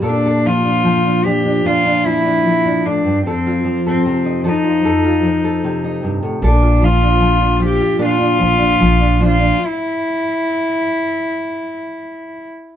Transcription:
<<
  \new Staff \with { instrumentName = "Cello" } { \time 4/4 \key bes \lydian \tempo 4 = 75 d'8 f'4 g'8 f'8 e'4 d'8 | c'8. c'8. ees'2 r8 | d'8 f'4 g'8 f'4. f'8 | e'2.~ e'8 r8 | }
  \new Staff \with { instrumentName = "Nylon-string guitar" } { \time 4/4 \key bes \lydian << { <bes a'>16 a'8 d'8 d'16 d'16 d'16 d'16 d'8 d'8 d'8. | a'16 f'8 a'8 ees'16 a'16 f'16 a'16 f'8 a'8 ees'8. | a'16 f'8 d'8 d'16 f'16 f'16 d'16 d'8 d'8 d'16 d'16 d'16 | r1 | } \\ { bes,8 f8 f8 f8 bes,8 f8 f8 a,16 g,16 | f,8 f8 c8 f8 f,8 f8 c8 g,16 a,16 | bes,8 f8 f8 f8 bes,8 f8 f8 f8 | r1 | } >> }
  \new Staff \with { instrumentName = "Upright bass" } { \clef bass \time 4/4 \key bes \lydian r1 | r1 | bes,,2 r8 bes,,8 bes,,4 | r1 | }
>>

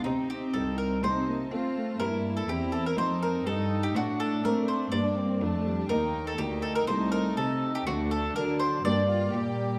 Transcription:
<<
  \new Staff \with { instrumentName = "Violin section" } { \time 4/4 \key c \dorian \tempo 4 = 123 g''2 a''2~ | a''4 bes''4 a''4 g''4 | fis''4 d''2 a''4 | \key g \minor g''4 g''4 a''2 |
a''2 g''4 g''4 | }
  \new Staff \with { instrumentName = "Mandolin" } { \time 4/4 \key c \dorian ees'8 g'8 a'8 bes'8 c''4.~ c''16 r16 | bes'8. a'16 g'8 a'16 bes'16 c''8 bes'8 a'8. g'16 | fis'8 a'8 bes'8 c''8 d''4.~ d''16 r16 | \key g \minor bes'8. a'16 g'8 a'16 bes'16 c''8 bes'8 a'8. g'16 |
fis'8 a'8 bes'8 c''8 d''4.~ d''16 r16 | }
  \new Staff \with { instrumentName = "Violin section" } { \time 4/4 \key c \dorian ees'2 ees'4 f'4 | e'4 e'4 ees'2 | d'2 d'8 c'8 d'4 | \key g \minor ees'4 ees'2. |
d'2 d'8 f'8 g'4 | }
  \new Staff \with { instrumentName = "Viola section" } { \time 4/4 \key c \dorian c'2 c'8 bes8 a8 a8 | bes4 c'4 c'4 ees'4 | d'4 c'4 bes4 a8 g8 | \key g \minor bes4 bes4 a2 |
a4 fis4 bes4 g4 | }
  \new Staff \with { instrumentName = "Harpsichord" } { \time 4/4 \key c \dorian <c' ees'>2 <a c' ees'>2 | <c' e'>2 <a c' f'>2 | <a c' d'>2 <bes d'>2 | \key g \minor <bes ees'>2 <a ees'>2 |
<a c' d'>2 <bes d'>2 | }
  \new Staff \with { instrumentName = "Harpsichord" } { \clef bass \time 4/4 \key c \dorian c4 c,4 c4 c'4 | g,4 e,4 f,4 g,4 | a,4 a4 g,4 f,4 | \key g \minor ees,4 d,4 c,4 c4 |
d,4 d4 g,4 bes,4 | }
  \new Staff \with { instrumentName = "Cello section" } { \clef bass \time 4/4 \key c \dorian c4 c,4 c4 c'4 | g,4 e,4 f,4 g,4 | a,4 a4 g,4 f,4 | \key g \minor ees,4 d,4 c,4 c4 |
d,4 d4 g,4 bes,4 | }
>>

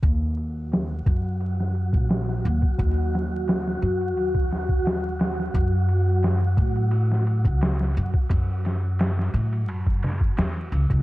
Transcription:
<<
  \new Staff \with { instrumentName = "Ambient pad" } { \time 4/4 \key ees \minor \tempo 4 = 87 ges'1~ | ges'1~ | ges'1~ | ges'1 | }
  \new Staff \with { instrumentName = "Synth texture" } { \time 4/4 \key ees \minor <ges ges'>1~ | <ges ges'>1~ | <ges ges'>1~ | <ges ges'>1 | }
  \new Staff \with { instrumentName = "Upright bass" } { \clef bass \time 4/4 \key ees \minor ees,4. ges,4~ ges,16 bes,,8. ees,16 r16 | ees,4. ges,8 ees,2 | ges,4. a,4~ a,16 des,8. ges,16 r16 | ges,4. a,8 ges,4 fes,8 des,16 des,16 | }
  \new DrumStaff \with { instrumentName = "Drums" } \drummode { \time 4/4 <bd cymr>8 cymr8 <cymr sn>8 <bd cymr>16 cymr16 cymr16 sn16 cymr16 bd16 <cymr sn>16 sn16 cymr16 bd16 | <bd cymr>8 <cymr sn>8 <cymr sn>16 sn16 cymr16 cymr16 cymr16 bd16 <cymr sn>16 bd16 <cymr sn>8 <cymr sn>16 sn16 | <bd cymr>8 cymr8 <cymr sn>8 <bd cymr>16 cymr16 cymr16 sn16 cymr16 bd16 <cymr sn>16 sn16 cymr16 bd16 | <bd cymr>8 <cymr sn>8 <cymr sn>16 sn16 cymr16 cymr16 cymr16 bd16 <cymr sn>16 bd16 <cymr sn>8 cymr16 bd16 | }
>>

